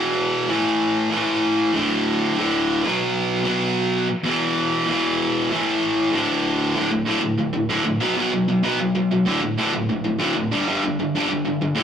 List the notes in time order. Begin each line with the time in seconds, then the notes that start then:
Already playing: E2 B2 E3
0.49 A2 E3 A3
1.10 A2 E3
1.15 A3
1.73 D2 A2 D3
2.35 D2 A2 D3
2.83 B2 F#3 B3
3.44 F#3 B3
3.48 B2
4.23 E2 B2 E3
4.86 E2 B2
4.90 E3
5.50 A2 E3 A3
6.11 D2 A2
6.15 D3
6.75 D2 A2 D3
6.91 D2 A2
7.06 D2 A2 D3
7.21 D2 A2
7.38 D2 A2
7.53 D2 A2
7.69 D2 A2 D3
7.85 D2 A2
8.00 B2 F#3 B3
8.16 B2 F#3 B3
8.33 B2 F#3
8.48 B2 F#3
8.63 B2 F#3 B3
8.80 B2 F#3
8.95 B2 F#3
9.11 B2 F#3
9.26 D2 A2 D3
9.42 D2 A2
9.58 D2 A2 D3
9.74 D2 A2
9.89 D2 A2
10.04 D2 A2
10.19 D2 A2 D3
10.36 D2 A2
10.52 G2 D3 G3
10.68 G2 D3 G3
10.83 G2 D3
10.99 G2 D3
11.15 G2 D3 G3
11.29 G2 D3
11.45 G2 D3
11.61 G2 D3
11.75 D2 A2 D3